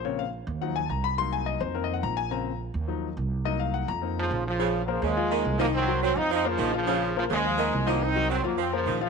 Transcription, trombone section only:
\new Staff \with { instrumentName = "Trombone section" } { \clef bass \time 4/4 \key bes \minor \tempo 4 = 211 << { r1 | r1 | r1 | r2 r8 f4 f8~ |
f8.~ f32 ges32 f8 aes2 bes8 | c'4 c'8 ees'8 ees'8 f4 f8~ | f4 f8 aes2 bes8 | ees'4 c'8 bes8 c'8 f4 f8 | } \\ { r1 | r1 | r1 | r2 r8 des4 des8~ |
des4 des8 f2 ges8 | ges4 ges8 c'8 c'8 des4 des8~ | des4 des8 f2 ges8 | c'4 ges8 ges8 f8 des4 des8 | } >> }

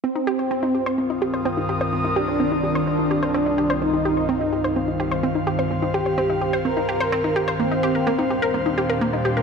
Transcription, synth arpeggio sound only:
\new Staff \with { instrumentName = "Synth arpeggio sound" } { \time 4/4 \key c \minor \tempo 4 = 127 c'16 ees'16 g'16 c''16 c'16 ees'16 g'16 c''16 c'16 ees'16 g'16 c''16 c'16 ees'16 g'16 c''16 | c'16 ees'16 g'16 c''16 c'16 ees'16 g'16 c''16 c'16 ees'16 g'16 c''16 c'16 ees'16 g'16 c''16 | c'16 ees'16 g'16 c''16 c'16 ees'16 g'16 c''16 c'16 ees'16 g'16 c''16 c'16 ees'16 g'16 c''16 | c'16 ees'16 g'16 c''16 c'16 ees'16 g'16 c''16 c'16 ees'16 g'16 c''16 c'16 ees'16 g'16 c''16 |
bes16 ees'16 g'16 bes'16 bes16 ees'16 g'16 bes'16 bes16 ees'16 g'16 bes'16 bes16 ees'16 g'16 bes'16 | }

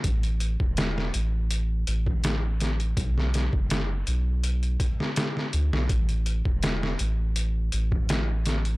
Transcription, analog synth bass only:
\new Staff \with { instrumentName = "Analog synth bass" } { \clef bass \time 4/4 \key b \phrygian \tempo 4 = 82 a,,8. e,,8. a,,4 a,,4. | b,,8. fis,,8. b,,4 r4 d,16 b,,16 | a,,8. e,,8. a,,4 a,,4. | }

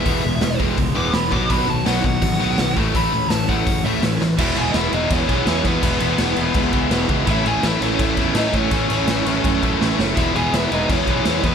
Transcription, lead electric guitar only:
\new Staff \with { instrumentName = "Lead electric guitar" } { \time 4/4 \key e \major \tempo 4 = 166 << { e''4. r4 d'''8 b''8 d'''8 | b''8 a''8 fis''8 fis''2 r8 | b''4 a''8 fis''4 e''8 r4 | e''8 gis''16. dis''32 e''8 dis''8 cis''4. b'8~ |
b'2.~ b'8 r8 | e''8 gis''8 e''8 cis''8 e''4 dis''8 cis''8~ | cis''2.~ cis''8 r8 | e''8 gis''8 e''8 dis''8 cis''4. b'8 | } \\ { r1 | r1 | r1 | e'8 gis'8 e'8 dis'8 cis'4. b8~ |
b2.~ b8 r8 | e'8 gis'8 e'8 cis'8 e'4 dis'8 cis'8~ | cis'2.~ cis'8 r8 | e'8 gis'8 e'8 dis'8 cis'4. b8 | } >> }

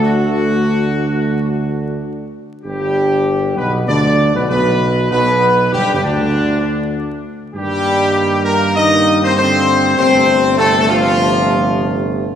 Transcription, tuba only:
\new Staff \with { instrumentName = "Tuba" } { \clef bass \time 4/4 \key g \major \tempo 4 = 98 d,2.~ d,8 r8 | g,,4. b,,8 d,8. b,,16 b,,4 | b,,4 \tuplet 3/2 { g,,8 g,,16 d,8.~ } d,4. r8 | g,1 |
g,,1 | }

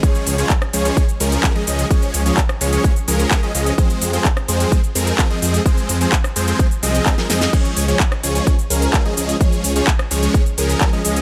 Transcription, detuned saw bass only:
\new Staff \with { instrumentName = "Detuned saw bass" } { \clef bass \time 4/4 \key des \major \tempo 4 = 128 r8 des,8 r8 des,8 r8 des,8 r8 des,8 | r8 des,8 r8 des,8 r8 des,8 r8 des,8 | r8 f,8 r8 f,8 r8 f,8 r8 f,8 | r8 f,8 r8 f,8 r8 c,8 r8 f,8 |
r8 des,8 r8 des,8 r8 des,8 r8 des,8 | r8 des,8 r8 des,8 r8 des,8 r8 des,8 | }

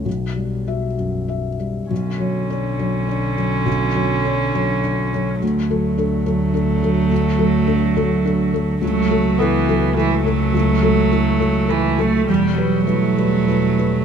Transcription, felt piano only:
\new Staff \with { instrumentName = "Felt piano" } { \time 3/4 \key b \minor \tempo 4 = 103 b,,8 g8 <fis' e''>8 fis,8 <fis' e''>8 g8 | b,,8 <fis cis''>8 <d' cis''>8 <fis cis''>8 <d' cis''>8 <fis cis''>8 | b,,8 <fis cis''>8 <d' cis''>8 <fis cis''>8 <d' cis''>8 <fis cis''>8 | d,8 <fis a'>8 <d' a'>8 <fis a'>8 <d' a'>8 <fis a'>8 |
d,8 <fis a'>8 <d' a'>8 <fis a'>8 <d' a'>8 <fis a'>8 | cis,8 <fis a'>8 <e' a'>8 <fis a'>8 <e' a'>8 <fis a'>8 | cis,8 <fis a'>8 <e' a'>8 <fis a'>8 <e' a'>8 <fis a'>8 | e,8 <g b'>8 <e' b'>8 <g b'>8 <e' b'>8 <g b'>8 | }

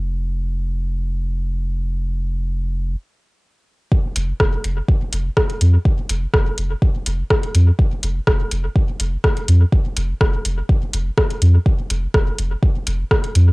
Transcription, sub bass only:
\new Staff \with { instrumentName = "Sub bass" } { \clef bass \time 4/4 \key c \phrygian \tempo 4 = 124 f,,1~ | f,,2 r2 | r8 f,,8 f,,8 f,,8 r8 f,,8 r8 f,8 | r8 f,,8 f,,8 f,,8 r8 f,,8 r8 f,8 |
r8 f,,8 f,,8 f,,8 r8 f,,8 r8 f,8 | r8 f,,8 f,,8 f,,8 r8 f,,8 r8 f,8 | r8 f,,8 f,,8 f,,8 r8 f,,8 r8 f,8 | }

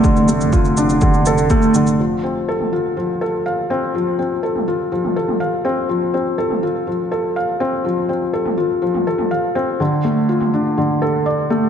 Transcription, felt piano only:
\new Staff \with { instrumentName = "Felt piano" } { \time 4/4 \key d \minor \tempo 4 = 123 d8 a8 f'8 d'8 d8 a'8 a8 d8 | f8 c'8 a'8 f'8 f8 a'8 f''8 c'8 | f8 c'8 a'8 f'8 f8 a'8 f''8 c'8 | f8 c'8 a'8 f'8 f8 a'8 f''8 c'8 |
f8 c'8 a'8 f'8 f8 a'8 f''8 c'8 | d8 a8 f'8 d'8 d8 a'8 d''8 a8 | }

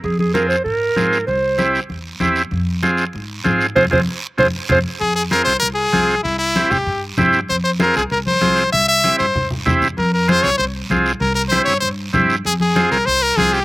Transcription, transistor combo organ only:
\new Staff \with { instrumentName = "Transistor combo organ" } { \time 4/4 \key f \minor \tempo 4 = 193 r4 <c' f' aes'>8 r4. <c' f' aes'>8 r8 | r4 <c' e' g'>8 r4. <c' e' g'>8 r8 | r4 <c' f' aes'>8 r4. <c' f' aes'>8 r8 | <c' f' aes'>8 <c' f' aes'>8 r4 <c' f' aes'>8 r8 <c' f' aes'>8 r8 |
r4 <c' f' aes'>8 r4. <c' f' aes'>8 r8 | r4 <c' e' g'>8 r4. <c' e' g'>8 r8 | r4 <c' f' aes'>8 r4. <c' f' aes'>8 r8 | r4 <c' e' g'>8 r4. <c' e' g'>8 r8 |
r4 <c' f' aes'>8 r4. <c' f' aes'>8 r8 | r4 <c' e' g'>8 r4. <c' e' g'>8 r8 | r4 <c' f' aes'>8 r4. <c' f' aes'>8 r8 | }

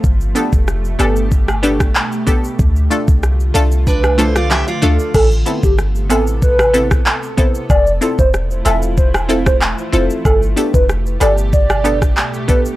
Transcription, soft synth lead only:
\new Staff \with { instrumentName = "Soft synth lead" } { \time 4/4 \key a \minor \tempo 4 = 94 r1 | r1 | a'16 r8 g'16 r8 a'16 r16 b'8. r8. c''16 r16 | d''8 r16 c''16 r8 e''16 r16 c''16 r8 c''16 r8 c''16 r16 |
a'16 r8 b'16 r8 d''16 r16 d''8. r8. b'16 r16 | }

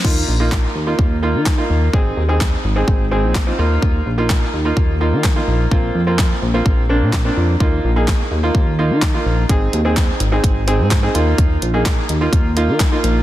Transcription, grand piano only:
\new Staff \with { instrumentName = "Grand piano" } { \time 4/4 \key aes \lydian \tempo 4 = 127 <bes ees' f'>8 r16 <bes ees' f'>8. r16 <bes ees' f'>8 r16 <bes ees' f'>8 r16 <bes ees' f'>8 r16 | <c' ees' aes'>8 r16 <c' ees' aes'>8. r16 <c' ees' aes'>8 r16 <c' ees' aes'>8 r16 <c' ees' f'>16 <bes ees' f'>8~ | <bes ees' f'>8 r16 <bes ees' f'>8. r16 <bes ees' f'>8 r16 <bes ees' f'>8 r16 <bes ees' f'>8 r16 | <bes c' f'>8 r16 <bes c' f'>8. r16 <bes c' f'>8 r16 <bes c' d'>8 r16 <bes c' d'>8 r16 |
<bes ees' f'>8 r16 <bes ees' aes'>8. r16 <bes ees' f'>8 r16 <bes ees' f'>8 r16 <bes ees' f'>8 r16 | <c' ees' aes'>8 r16 <c' ees' aes'>8. r16 <c' ees' aes'>8 r16 <c' ees' aes'>8 r16 <c' ees' aes'>16 <bes ees' f'>8~ | <bes ees' f'>8 r16 <bes ees' aes'>8. r16 <bes ees' f'>8 r16 <bes ees' f'>8 r16 <bes ees' f'>8 r16 | }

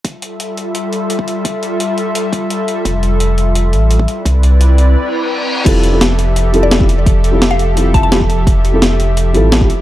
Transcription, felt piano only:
\new Staff \with { instrumentName = "Felt piano" } { \time 4/4 \key f \lydian \tempo 4 = 171 r1 | r1 | r1 | r1 |
<g c' e' f' a'>8. <g c' e' f' a'>16 r4. <g c' e' f' a'>8. <g c' e' f' g'>16 r8 | r8. <g c' e' f' a'>16 r4 <g c' e' f' g'>4 <g c' e' f' g'>16 r8. | r8. <g c' e' f' a'>16 r4. <g c' e' f' a'>8. <g c' e' f' g'>16 r8 | }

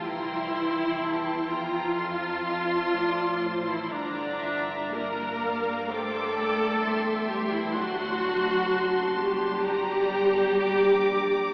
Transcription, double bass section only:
\new Staff \with { instrumentName = "Double bass section" } { \clef bass \time 4/4 \key g \dorian \tempo 4 = 63 c,4 e,4 f,4 a,4 | g,2. e,4 | d,4 fis,,4 g,,4 bes,,4 | }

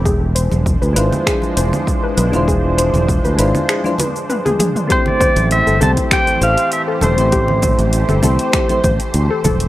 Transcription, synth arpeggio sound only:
\new Staff \with { instrumentName = "Synth arpeggio sound" } { \time 4/4 \key a \minor \tempo 4 = 99 gis'16 r16 c''16 r8 b'16 b'16 r16 gis'16 r16 c''16 r8 b'16 b'16 r16 | gis'16 r16 c''16 r8 b'16 b'16 r16 gis'16 r16 b'16 r16 b'16 gis'16 gis'16 r16 | g'16 r16 c''16 r8 a'16 a'16 r16 g'16 r16 c''16 r8 a'16 a'16 r16 | g'16 r16 c''16 r8 a'16 a'16 r16 g'16 r16 c''16 r8 a'16 a'16 r16 | }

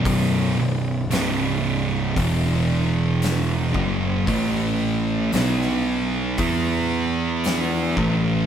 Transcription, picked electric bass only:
\new Staff \with { instrumentName = "Picked electric bass" } { \clef bass \time 4/4 \key e \dorian \tempo 4 = 57 b,,,8 b,,,8 c,,4 e,,4. fis,,8 | a,,4 b,,4 e,4. a,,8 | }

